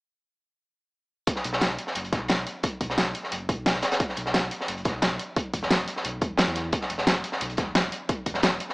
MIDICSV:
0, 0, Header, 1, 3, 480
1, 0, Start_track
1, 0, Tempo, 340909
1, 1794, Time_signature, 4, 2, 24, 8
1, 12305, End_track
2, 0, Start_track
2, 0, Title_t, "Sub bass"
2, 0, Program_c, 0, 38
2, 2034, Note_on_c, 0, 35, 97
2, 2375, Note_off_c, 0, 35, 0
2, 2394, Note_on_c, 0, 35, 90
2, 2502, Note_off_c, 0, 35, 0
2, 2754, Note_on_c, 0, 30, 93
2, 2970, Note_off_c, 0, 30, 0
2, 2993, Note_on_c, 0, 35, 73
2, 3335, Note_off_c, 0, 35, 0
2, 3354, Note_on_c, 0, 35, 83
2, 3462, Note_off_c, 0, 35, 0
2, 3953, Note_on_c, 0, 35, 95
2, 4295, Note_off_c, 0, 35, 0
2, 4314, Note_on_c, 0, 35, 89
2, 4422, Note_off_c, 0, 35, 0
2, 4674, Note_on_c, 0, 30, 92
2, 4890, Note_off_c, 0, 30, 0
2, 4914, Note_on_c, 0, 35, 72
2, 5255, Note_off_c, 0, 35, 0
2, 5274, Note_on_c, 0, 35, 84
2, 5382, Note_off_c, 0, 35, 0
2, 5873, Note_on_c, 0, 35, 96
2, 6215, Note_off_c, 0, 35, 0
2, 6235, Note_on_c, 0, 35, 90
2, 6342, Note_off_c, 0, 35, 0
2, 6593, Note_on_c, 0, 30, 92
2, 6810, Note_off_c, 0, 30, 0
2, 6835, Note_on_c, 0, 35, 77
2, 7176, Note_off_c, 0, 35, 0
2, 7196, Note_on_c, 0, 35, 80
2, 7303, Note_off_c, 0, 35, 0
2, 7794, Note_on_c, 0, 28, 94
2, 8135, Note_off_c, 0, 28, 0
2, 8155, Note_on_c, 0, 28, 93
2, 8262, Note_off_c, 0, 28, 0
2, 8515, Note_on_c, 0, 35, 93
2, 8731, Note_off_c, 0, 35, 0
2, 8754, Note_on_c, 0, 28, 75
2, 9095, Note_off_c, 0, 28, 0
2, 9114, Note_on_c, 0, 40, 94
2, 9455, Note_off_c, 0, 40, 0
2, 9714, Note_on_c, 0, 28, 93
2, 10055, Note_off_c, 0, 28, 0
2, 10075, Note_on_c, 0, 28, 86
2, 10182, Note_off_c, 0, 28, 0
2, 10435, Note_on_c, 0, 35, 91
2, 10651, Note_off_c, 0, 35, 0
2, 10674, Note_on_c, 0, 28, 78
2, 11015, Note_off_c, 0, 28, 0
2, 11034, Note_on_c, 0, 28, 86
2, 11142, Note_off_c, 0, 28, 0
2, 11634, Note_on_c, 0, 28, 93
2, 11975, Note_off_c, 0, 28, 0
2, 11995, Note_on_c, 0, 28, 90
2, 12102, Note_off_c, 0, 28, 0
2, 12305, End_track
3, 0, Start_track
3, 0, Title_t, "Drums"
3, 1788, Note_on_c, 9, 42, 83
3, 1793, Note_off_c, 9, 42, 0
3, 1793, Note_on_c, 9, 36, 109
3, 1793, Note_on_c, 9, 42, 88
3, 1909, Note_on_c, 9, 38, 40
3, 1933, Note_off_c, 9, 36, 0
3, 1934, Note_off_c, 9, 42, 0
3, 2034, Note_on_c, 9, 42, 63
3, 2036, Note_off_c, 9, 42, 0
3, 2036, Note_on_c, 9, 42, 69
3, 2050, Note_off_c, 9, 38, 0
3, 2149, Note_on_c, 9, 38, 58
3, 2176, Note_off_c, 9, 42, 0
3, 2266, Note_on_c, 9, 42, 83
3, 2274, Note_off_c, 9, 38, 0
3, 2274, Note_off_c, 9, 42, 0
3, 2274, Note_on_c, 9, 38, 105
3, 2274, Note_on_c, 9, 42, 94
3, 2415, Note_off_c, 9, 38, 0
3, 2415, Note_off_c, 9, 42, 0
3, 2514, Note_on_c, 9, 42, 61
3, 2516, Note_off_c, 9, 42, 0
3, 2516, Note_on_c, 9, 42, 63
3, 2632, Note_on_c, 9, 38, 45
3, 2657, Note_off_c, 9, 42, 0
3, 2748, Note_on_c, 9, 42, 82
3, 2754, Note_off_c, 9, 42, 0
3, 2754, Note_on_c, 9, 42, 88
3, 2772, Note_off_c, 9, 38, 0
3, 2880, Note_off_c, 9, 42, 0
3, 2880, Note_on_c, 9, 42, 42
3, 2993, Note_on_c, 9, 36, 99
3, 2993, Note_on_c, 9, 38, 33
3, 2995, Note_off_c, 9, 42, 0
3, 2995, Note_on_c, 9, 42, 65
3, 2997, Note_off_c, 9, 42, 0
3, 2997, Note_on_c, 9, 42, 54
3, 3134, Note_off_c, 9, 36, 0
3, 3134, Note_off_c, 9, 38, 0
3, 3137, Note_off_c, 9, 42, 0
3, 3216, Note_on_c, 9, 42, 76
3, 3231, Note_on_c, 9, 38, 107
3, 3233, Note_off_c, 9, 38, 0
3, 3233, Note_off_c, 9, 42, 0
3, 3233, Note_on_c, 9, 38, 109
3, 3233, Note_on_c, 9, 42, 88
3, 3374, Note_off_c, 9, 38, 0
3, 3374, Note_off_c, 9, 42, 0
3, 3474, Note_on_c, 9, 42, 61
3, 3476, Note_off_c, 9, 42, 0
3, 3476, Note_on_c, 9, 42, 55
3, 3617, Note_off_c, 9, 42, 0
3, 3707, Note_on_c, 9, 42, 87
3, 3713, Note_off_c, 9, 42, 0
3, 3713, Note_on_c, 9, 36, 114
3, 3713, Note_on_c, 9, 42, 86
3, 3854, Note_off_c, 9, 36, 0
3, 3854, Note_off_c, 9, 42, 0
3, 3953, Note_on_c, 9, 36, 60
3, 3953, Note_on_c, 9, 42, 65
3, 3954, Note_off_c, 9, 42, 0
3, 3954, Note_on_c, 9, 42, 61
3, 4080, Note_on_c, 9, 38, 55
3, 4094, Note_off_c, 9, 36, 0
3, 4095, Note_off_c, 9, 42, 0
3, 4193, Note_off_c, 9, 38, 0
3, 4193, Note_on_c, 9, 38, 106
3, 4193, Note_on_c, 9, 42, 88
3, 4199, Note_off_c, 9, 42, 0
3, 4199, Note_on_c, 9, 42, 78
3, 4334, Note_off_c, 9, 38, 0
3, 4340, Note_off_c, 9, 42, 0
3, 4433, Note_on_c, 9, 42, 58
3, 4434, Note_off_c, 9, 42, 0
3, 4434, Note_on_c, 9, 42, 62
3, 4554, Note_on_c, 9, 38, 36
3, 4574, Note_off_c, 9, 42, 0
3, 4673, Note_on_c, 9, 42, 84
3, 4675, Note_off_c, 9, 42, 0
3, 4675, Note_on_c, 9, 42, 82
3, 4695, Note_off_c, 9, 38, 0
3, 4816, Note_off_c, 9, 42, 0
3, 4913, Note_on_c, 9, 36, 106
3, 4914, Note_on_c, 9, 42, 61
3, 4916, Note_off_c, 9, 42, 0
3, 4916, Note_on_c, 9, 42, 68
3, 5054, Note_off_c, 9, 36, 0
3, 5057, Note_off_c, 9, 42, 0
3, 5154, Note_on_c, 9, 38, 109
3, 5154, Note_on_c, 9, 42, 91
3, 5156, Note_off_c, 9, 38, 0
3, 5156, Note_on_c, 9, 38, 113
3, 5277, Note_off_c, 9, 38, 0
3, 5277, Note_on_c, 9, 38, 45
3, 5294, Note_off_c, 9, 42, 0
3, 5384, Note_on_c, 9, 42, 69
3, 5388, Note_off_c, 9, 38, 0
3, 5388, Note_on_c, 9, 38, 89
3, 5393, Note_off_c, 9, 42, 0
3, 5393, Note_on_c, 9, 42, 60
3, 5514, Note_off_c, 9, 42, 0
3, 5514, Note_on_c, 9, 42, 69
3, 5519, Note_off_c, 9, 38, 0
3, 5519, Note_on_c, 9, 38, 102
3, 5628, Note_off_c, 9, 42, 0
3, 5628, Note_on_c, 9, 42, 77
3, 5633, Note_off_c, 9, 42, 0
3, 5633, Note_on_c, 9, 42, 82
3, 5634, Note_on_c, 9, 36, 110
3, 5660, Note_off_c, 9, 38, 0
3, 5757, Note_on_c, 9, 38, 36
3, 5774, Note_off_c, 9, 36, 0
3, 5774, Note_off_c, 9, 42, 0
3, 5866, Note_on_c, 9, 42, 64
3, 5874, Note_off_c, 9, 42, 0
3, 5874, Note_on_c, 9, 42, 61
3, 5898, Note_off_c, 9, 38, 0
3, 5995, Note_on_c, 9, 38, 51
3, 6015, Note_off_c, 9, 42, 0
3, 6109, Note_off_c, 9, 38, 0
3, 6109, Note_on_c, 9, 38, 108
3, 6114, Note_off_c, 9, 38, 0
3, 6114, Note_on_c, 9, 38, 124
3, 6114, Note_on_c, 9, 42, 94
3, 6116, Note_off_c, 9, 42, 0
3, 6116, Note_on_c, 9, 42, 83
3, 6255, Note_off_c, 9, 38, 0
3, 6257, Note_off_c, 9, 42, 0
3, 6354, Note_on_c, 9, 42, 60
3, 6355, Note_off_c, 9, 42, 0
3, 6355, Note_on_c, 9, 42, 61
3, 6484, Note_on_c, 9, 38, 50
3, 6496, Note_off_c, 9, 42, 0
3, 6594, Note_on_c, 9, 42, 82
3, 6595, Note_off_c, 9, 42, 0
3, 6595, Note_on_c, 9, 42, 76
3, 6625, Note_off_c, 9, 38, 0
3, 6723, Note_off_c, 9, 42, 0
3, 6723, Note_on_c, 9, 42, 39
3, 6827, Note_off_c, 9, 42, 0
3, 6827, Note_on_c, 9, 42, 62
3, 6834, Note_off_c, 9, 42, 0
3, 6834, Note_on_c, 9, 36, 104
3, 6834, Note_on_c, 9, 42, 65
3, 6848, Note_on_c, 9, 38, 37
3, 6975, Note_off_c, 9, 36, 0
3, 6975, Note_off_c, 9, 42, 0
3, 6989, Note_off_c, 9, 38, 0
3, 7069, Note_on_c, 9, 38, 117
3, 7069, Note_on_c, 9, 42, 80
3, 7073, Note_off_c, 9, 38, 0
3, 7073, Note_off_c, 9, 42, 0
3, 7073, Note_on_c, 9, 38, 108
3, 7073, Note_on_c, 9, 42, 86
3, 7214, Note_off_c, 9, 38, 0
3, 7214, Note_off_c, 9, 42, 0
3, 7313, Note_on_c, 9, 42, 61
3, 7314, Note_off_c, 9, 42, 0
3, 7314, Note_on_c, 9, 42, 64
3, 7455, Note_off_c, 9, 42, 0
3, 7553, Note_on_c, 9, 42, 81
3, 7554, Note_on_c, 9, 36, 116
3, 7561, Note_off_c, 9, 42, 0
3, 7561, Note_on_c, 9, 42, 75
3, 7695, Note_off_c, 9, 36, 0
3, 7702, Note_off_c, 9, 42, 0
3, 7794, Note_on_c, 9, 36, 61
3, 7794, Note_on_c, 9, 42, 65
3, 7922, Note_on_c, 9, 38, 52
3, 7934, Note_off_c, 9, 42, 0
3, 7935, Note_off_c, 9, 36, 0
3, 8032, Note_on_c, 9, 42, 78
3, 8034, Note_off_c, 9, 38, 0
3, 8034, Note_off_c, 9, 42, 0
3, 8034, Note_on_c, 9, 38, 123
3, 8034, Note_on_c, 9, 42, 87
3, 8038, Note_off_c, 9, 38, 0
3, 8038, Note_on_c, 9, 38, 106
3, 8174, Note_off_c, 9, 42, 0
3, 8179, Note_off_c, 9, 38, 0
3, 8274, Note_on_c, 9, 42, 61
3, 8280, Note_off_c, 9, 42, 0
3, 8280, Note_on_c, 9, 42, 62
3, 8397, Note_on_c, 9, 38, 41
3, 8421, Note_off_c, 9, 42, 0
3, 8515, Note_on_c, 9, 42, 80
3, 8538, Note_off_c, 9, 38, 0
3, 8655, Note_off_c, 9, 42, 0
3, 8750, Note_on_c, 9, 42, 63
3, 8754, Note_on_c, 9, 36, 107
3, 8755, Note_off_c, 9, 42, 0
3, 8755, Note_on_c, 9, 42, 64
3, 8895, Note_off_c, 9, 36, 0
3, 8896, Note_off_c, 9, 42, 0
3, 8976, Note_on_c, 9, 38, 112
3, 8994, Note_off_c, 9, 38, 0
3, 8994, Note_on_c, 9, 38, 115
3, 8994, Note_on_c, 9, 42, 83
3, 8997, Note_off_c, 9, 42, 0
3, 8997, Note_on_c, 9, 42, 82
3, 9106, Note_off_c, 9, 38, 0
3, 9106, Note_on_c, 9, 38, 45
3, 9137, Note_off_c, 9, 42, 0
3, 9228, Note_on_c, 9, 42, 57
3, 9232, Note_off_c, 9, 38, 0
3, 9232, Note_on_c, 9, 38, 35
3, 9234, Note_off_c, 9, 42, 0
3, 9234, Note_on_c, 9, 42, 60
3, 9372, Note_off_c, 9, 38, 0
3, 9375, Note_off_c, 9, 42, 0
3, 9469, Note_on_c, 9, 42, 89
3, 9474, Note_off_c, 9, 42, 0
3, 9474, Note_on_c, 9, 36, 109
3, 9474, Note_on_c, 9, 42, 83
3, 9593, Note_on_c, 9, 38, 38
3, 9615, Note_off_c, 9, 36, 0
3, 9615, Note_off_c, 9, 42, 0
3, 9711, Note_on_c, 9, 42, 62
3, 9714, Note_off_c, 9, 42, 0
3, 9714, Note_on_c, 9, 42, 59
3, 9733, Note_off_c, 9, 38, 0
3, 9826, Note_on_c, 9, 38, 58
3, 9855, Note_off_c, 9, 42, 0
3, 9954, Note_off_c, 9, 38, 0
3, 9954, Note_on_c, 9, 38, 115
3, 9954, Note_on_c, 9, 42, 87
3, 9966, Note_off_c, 9, 38, 0
3, 9966, Note_on_c, 9, 38, 102
3, 10095, Note_off_c, 9, 42, 0
3, 10107, Note_off_c, 9, 38, 0
3, 10193, Note_on_c, 9, 42, 60
3, 10194, Note_off_c, 9, 42, 0
3, 10194, Note_on_c, 9, 42, 58
3, 10308, Note_on_c, 9, 38, 50
3, 10335, Note_off_c, 9, 42, 0
3, 10434, Note_on_c, 9, 42, 87
3, 10448, Note_off_c, 9, 38, 0
3, 10554, Note_off_c, 9, 42, 0
3, 10554, Note_on_c, 9, 42, 42
3, 10660, Note_off_c, 9, 42, 0
3, 10660, Note_on_c, 9, 42, 57
3, 10674, Note_off_c, 9, 42, 0
3, 10674, Note_on_c, 9, 36, 99
3, 10674, Note_on_c, 9, 42, 60
3, 10676, Note_on_c, 9, 38, 32
3, 10815, Note_off_c, 9, 36, 0
3, 10815, Note_off_c, 9, 42, 0
3, 10816, Note_off_c, 9, 38, 0
3, 10913, Note_on_c, 9, 38, 108
3, 10914, Note_off_c, 9, 38, 0
3, 10914, Note_on_c, 9, 38, 114
3, 10914, Note_on_c, 9, 42, 86
3, 10915, Note_off_c, 9, 42, 0
3, 10915, Note_on_c, 9, 42, 81
3, 11055, Note_off_c, 9, 38, 0
3, 11056, Note_off_c, 9, 42, 0
3, 11154, Note_on_c, 9, 42, 56
3, 11160, Note_off_c, 9, 42, 0
3, 11160, Note_on_c, 9, 42, 69
3, 11301, Note_off_c, 9, 42, 0
3, 11391, Note_on_c, 9, 42, 71
3, 11393, Note_off_c, 9, 42, 0
3, 11393, Note_on_c, 9, 42, 82
3, 11394, Note_on_c, 9, 36, 106
3, 11533, Note_off_c, 9, 42, 0
3, 11535, Note_off_c, 9, 36, 0
3, 11631, Note_on_c, 9, 42, 68
3, 11634, Note_off_c, 9, 42, 0
3, 11634, Note_on_c, 9, 36, 56
3, 11634, Note_on_c, 9, 42, 62
3, 11743, Note_on_c, 9, 38, 52
3, 11774, Note_off_c, 9, 36, 0
3, 11775, Note_off_c, 9, 42, 0
3, 11866, Note_on_c, 9, 42, 86
3, 11873, Note_off_c, 9, 38, 0
3, 11873, Note_off_c, 9, 42, 0
3, 11873, Note_on_c, 9, 38, 113
3, 11873, Note_on_c, 9, 42, 82
3, 11874, Note_off_c, 9, 38, 0
3, 11874, Note_on_c, 9, 38, 112
3, 12014, Note_off_c, 9, 42, 0
3, 12015, Note_off_c, 9, 38, 0
3, 12112, Note_on_c, 9, 42, 63
3, 12113, Note_off_c, 9, 42, 0
3, 12113, Note_on_c, 9, 42, 58
3, 12238, Note_on_c, 9, 38, 39
3, 12254, Note_off_c, 9, 42, 0
3, 12305, Note_off_c, 9, 38, 0
3, 12305, End_track
0, 0, End_of_file